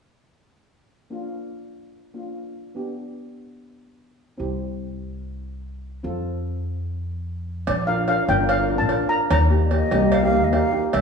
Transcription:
1.10 steel pan A#3 D4 F4
2.14 steel pan A#3 D4 F4
2.75 steel pan B3 D4 G4
4.38 upright bass C2, steel pan C4 E4 G4
6.03 upright bass F2, steel pan C4 F4 A4
7.67 upright bass A#1, steel pan D5, cowbell
7.87 steel pan D4 F4 A#4 F5
8.08 steel pan D4 F4 A#4 F5, cowbell
8.28 upright bass G1, steel pan D4 F4 A#4 G5, cowbell
8.40 steel pan D4 F4 A#4
8.49 steel pan F5, cowbell
8.59 steel pan D4 F4 A#4
8.69 steel pan D4 F4 A#4
8.78 upright bass A#1, steel pan A5
8.88 steel pan D4 F4 A#4, cowbell
9.08 steel pan D4 F4 A#4 A#5
9.30 upright bass D#2, steel pan A#5, cowbell
9.50 steel pan A#3 D#4 G4
9.64 flute D5
9.71 steel pan A#3 D#4 G4, flute D#5, cowbell
9.91 upright bass C2, steel pan A#3 D#4 G4, cowbell
10.01 steel pan A#3 D#4 G4
10.12 flute F5, cowbell
10.22 steel pan A#3 D#4 G4, flute F5
10.32 steel pan A#3 D#4 G4
10.43 upright bass D#2, flute D#5
10.52 steel pan A#3 D#4 G4, flute F5, cowbell
10.72 steel pan A#3 D#4 G4
10.93 upright bass C2, steel pan E5, cowbell

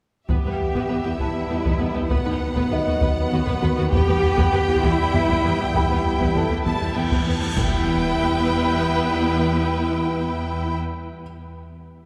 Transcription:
0.29 analog synth bass E2, double bass section E2, synth arpeggio sound E3, trombone section G3 B3, french horn section B3, viola section B3, cello section G4, violin section B4 E5, taiko
0.44 double bass section E2, analog synth bass E2, synth arpeggio sound G3, viola section B3, violin section B4
0.60 analog synth bass E2
0.75 double bass section E2, analog synth bass E2, synth arpeggio sound E3, viola section B3, violin section B4, taiko
0.88 double bass section E2, analog synth bass E3, viola section B3, synth arpeggio sound B3, violin section B4
1.04 analog synth bass E2, double bass section E2, viola section B3, synth arpeggio sound E4, violin section G4
1.18 analog synth bass E2, double bass section E2, synth arpeggio sound E3, french horn section G3, viola section B3, cello section E4, violin section B4, grand piano A5, taiko
1.35 analog synth bass E2
1.49 double bass section E2, analog synth bass E3, viola section B3, synth arpeggio sound B3, violin section G4
1.63 double bass section E2, analog synth bass E2, synth arpeggio sound E3, viola section B3, violin section B4, taiko
1.78 double bass section E2, analog synth bass E3, viola section B3, synth arpeggio sound B3, violin section B4
1.95 double bass section E2, analog synth bass E3, viola section B3, synth arpeggio sound B3, violin section G4
2.10 double bass section D#2, analog synth bass D#2, french horn section D#3, trombone section F#3, synth arpeggio sound B3, viola section B3, cello section B3, violin section B4 F#5, taiko
2.25 double bass section D#2, analog synth bass D#2, viola section B3, synth arpeggio sound D#4, violin section B4
2.41 analog synth bass D#2
2.56 analog synth bass D#2, double bass section D#2, viola section B3, synth arpeggio sound B3, violin section B4, taiko
2.71 double bass section D#2, analog synth bass D#3, viola section B3, grand piano D#4 D#5, synth arpeggio sound F#4, violin section B4
2.86 double bass section D#2, analog synth bass D#2, viola section B3, violin section F#4, synth arpeggio sound B4
3.00 double bass section D#2, analog synth bass D#2, french horn section D#3, viola section B3, cello section B3, synth arpeggio sound B3, violin section B4, taiko
3.17 analog synth bass D#2
3.31 double bass section D#2, analog synth bass D#3, viola section B3, synth arpeggio sound F#4, violin section F#4
3.46 double bass section D#2, analog synth bass D#2, viola section B3, synth arpeggio sound B3, violin section B4, taiko
3.62 double bass section D#2, analog synth bass D#3, viola section B3, synth arpeggio sound F#4, violin section B4
3.77 double bass section D#2, analog synth bass D#3, viola section B3, violin section F#4, synth arpeggio sound F#4
3.92 double bass section E2, analog synth bass E2, synth arpeggio sound E3, trombone section G3 B3, french horn section B3, viola section B3, cello section G4, violin section B4 G5, taiko
4.07 double bass section E2, analog synth bass E2, synth arpeggio sound G3, viola section B3, violin section B4
4.23 analog synth bass E2
4.37 double bass section E2, analog synth bass E2, synth arpeggio sound E3, viola section B3, violin section B4, taiko
4.52 double bass section E2, analog synth bass E3, viola section B3, synth arpeggio sound B3, violin section B4, taiko low
4.67 double bass section E2, analog synth bass E2, viola section B3, synth arpeggio sound E4, violin section G4
4.83 double bass section E2, analog synth bass E2, synth arpeggio sound E3, french horn section G3, viola section B3, cello section E4, violin section B4, taiko
4.99 analog synth bass E2
5.14 double bass section E2, analog synth bass E3, viola section B3, synth arpeggio sound B3, violin section G4, grand piano E5, taiko low
5.29 analog synth bass E2, double bass section E2, synth arpeggio sound E3, viola section B3, violin section B4, taiko
5.44 double bass section E2, analog synth bass E3, viola section B3, synth arpeggio sound B3, violin section B4
5.59 double bass section E2, analog synth bass E3, viola section B3, synth arpeggio sound B3, violin section G4
5.73 double bass section E2, analog synth bass E2, synth arpeggio sound E3, french horn section G3, viola section B3, cello section E4, grand piano G4 G5, violin section B4, taiko, cymbal swell
5.90 double bass section E2, analog synth bass E2, synth arpeggio sound G3, viola section B3, violin section B4
6.06 analog synth bass E2
6.20 double bass section E2, analog synth bass E2, synth arpeggio sound E3, viola section B3, violin section B4, taiko
6.35 double bass section E2, analog synth bass E3, viola section B3, synth arpeggio sound B3, grand piano A4 A5, violin section B4, taiko low
6.50 analog synth bass E2, double bass section E2, viola section B3, synth arpeggio sound E4, violin section G4
6.65 analog synth bass E2, double bass section E2, synth arpeggio sound E3, viola section B3, violin section B4 A5, taiko
6.82 analog synth bass E2
6.96 double bass section E2, analog synth bass E3, synth arpeggio sound B3, viola section B3, violin section G4 G5, taiko low
7.11 analog synth bass E2, double bass section E2, synth arpeggio sound E3, viola section B3, violin section B4, taiko
7.26 double bass section E2, analog synth bass E3, viola section B3, synth arpeggio sound B3, violin section B4 A5
7.42 double bass section E2, analog synth bass E3, viola section B3, synth arpeggio sound B3, violin section G4
7.56 double bass section E2, trombone section G3 B3, viola section B3, cello section E4, french horn section E4, violin section B4 G5, taiko, impact

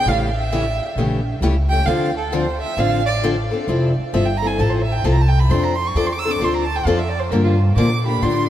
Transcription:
Already playing: violin G5
0.06 upright bass A1, steel-string acoustic guitar C#3 E3 A3 C#4 G4, violin F5
0.37 violin E5
0.52 steel-string acoustic guitar C#3 E3 A3 C#4 G4
0.95 upright bass A#1, steel-string acoustic guitar C#3 E3 A3 C#4 G4
1.41 upright bass C#2, steel-string acoustic guitar C#3 E3 A3 C#4 G4
1.70 steel-string acoustic guitar A3 C#4 G4, violin G5
1.86 upright bass D2, steel-string acoustic guitar D3 F3 C4 D4 A4, violin F5
2.18 violin A4
2.32 steel-string acoustic guitar D3 F3 C4 D4 A4, violin C5
2.61 violin E5
2.77 upright bass A1, steel-string acoustic guitar D3 F3 C4 D4 A4, violin F5
3.06 violin D5
3.23 steel-string acoustic guitar D3 F3 C4 D4 A4
3.51 steel-string acoustic guitar C4 D4 A4
3.68 upright bass F1, steel-string acoustic guitar F3 C4 E4 A4
3.98 muted upright bass stroke
4.13 upright bass G1, steel-string acoustic guitar F3 C4 E4 A4, violin E5
4.26 violin G5
4.37 violin A#5
4.42 steel-string acoustic guitar C4 E4 A4
4.47 violin G#5
4.58 upright bass A1, steel-string acoustic guitar F3 C4 E4 A4, violin A5
4.70 violin C5
4.82 violin E5
4.93 violin G5
5.04 upright bass C2, steel-string acoustic guitar F3 C4 E4 A4, violin A5
5.12 violin A#5
5.21 violin A5
5.28 violin G5
5.40 violin B5
5.49 upright bass F2, steel-string acoustic guitar F3 C4 D4 A4, violin C6
5.63 violin A#5
5.75 violin C6
5.87 violin C#6
5.95 upright bass E2, steel-string acoustic guitar F3 C4 D4 A4, violin D6
6.06 violin C6
6.13 violin D6
6.19 violin E6
6.25 steel-string acoustic guitar C4 D4 A4
6.31 violin D6
6.40 upright bass D2, steel-string acoustic guitar F3 C4 D4 A4
6.44 violin C6
6.54 violin A#5
6.65 violin A5
6.76 violin G5
6.85 upright bass F2, steel-string acoustic guitar F3 C4 D4 A4, violin F5
6.99 violin E5
7.09 violin D5
7.20 violin C5
7.31 upright bass G2, steel-string acoustic guitar D3 F3 A#3 D4 G4, violin A#4
7.44 violin F4
7.76 upright bass A#2, steel-string acoustic guitar D3 F3 A#3 D4 G4, violin D6
8.06 steel-string acoustic guitar A#3 D4 G4, violin B5
8.22 upright bass A2, steel-string acoustic guitar D3 F3 A#3 D4 G4, violin C6

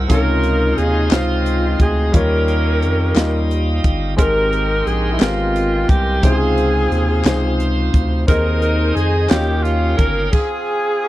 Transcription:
Already playing: grand piano G#2 G#3 E4 F#4 C5
0.08 sub bass C#2, grand piano C3 C#3 D#4 F4 C#5, saxophone section D#4, alto saxophone A#4, tonewheel organ D#5 F5 C6 D#6, kick, closed hi-hat
0.12 saxophone section F4 A#4
0.43 closed hi-hat
0.78 sub bass D#2, alto saxophone G#4, saxophone section G#4, closed hi-hat
1.10 sub bass C#2, grand piano C3 D#4 F4 C5, saxophone section G#3 C4 F4, alto saxophone F4, snare, clap, closed hi-hat
1.46 closed hi-hat
1.80 sub bass D2, alto saxophone G#4, saxophone section G#4, kick, closed hi-hat
2.12 sub bass D#2, grand piano D#3 G3 D#4 F4 C#5, saxophone section C#4 G4 A#4, alto saxophone A#4, tonewheel organ G5, kick, closed hi-hat
2.48 closed hi-hat
2.82 sub bass F2, closed hi-hat
3.14 sub bass D#2, grand piano G3 D#4 F4 D#5, snare, clap, closed hi-hat
3.51 closed hi-hat
3.84 sub bass G1, kick, closed hi-hat
4.17 sub bass G#1, grand piano G#2 G#3 C4 G4 A#4, tonewheel organ A#4 D#5 C6, alto saxophone A#4, kick, closed hi-hat
4.21 saxophone section D#4 G4 A#4
4.53 closed hi-hat
4.86 sub bass A#1, alto saxophone G#4, saxophone section G#4, closed hi-hat
5.13 alto saxophone E4
5.18 sub bass G#1, grand piano G#3 B3 G4 A#4, alto saxophone F4, snare, clap, closed hi-hat
5.23 saxophone section A#3 C4 F4, grand piano C4
5.56 closed hi-hat
5.89 sub bass C2, alto saxophone G4, saxophone section G4, kick, closed hi-hat
6.22 sub bass C#2, grand piano C3 C#3 D#4 E4 C5, saxophone section C4 G#4, alto saxophone G4, tonewheel organ C5 F5 D#6, kick, closed hi-hat
6.26 saxophone section F4
6.31 grand piano F4
6.35 alto saxophone G#4
6.58 closed hi-hat
6.91 sub bass D#2, closed hi-hat
7.24 sub bass C#2, grand piano C3 D#4 F4 C5, snare, clap, closed hi-hat
7.60 closed hi-hat
7.94 sub bass D2, kick, closed hi-hat
8.27 sub bass D#2, grand piano D#3 C4 D#4 G#4 D#5, saxophone section D#4 A#4, alto saxophone A#4, tonewheel organ C5 D#5 G#5 D#6, kick, closed hi-hat
8.62 alto saxophone A#4, closed hi-hat
8.95 sub bass F2, alto saxophone G#4, saxophone section G#4, closed hi-hat
9.29 sub bass D#2, grand piano D#3 C#4 F4 F#4 D#5, saxophone section A#3 C#4 G4, alto saxophone G4, tonewheel organ C#5 F5 G5, snare, clap, closed hi-hat
9.38 grand piano G4
9.63 alto saxophone F4, saxophone section F4, closed hi-hat
9.97 sub bass G1, alto saxophone A#4, saxophone section A#4, kick, closed hi-hat
10.32 saxophone section C4 F4 G#4, alto saxophone G#4, kick, crash
11.02 saxophone section G4

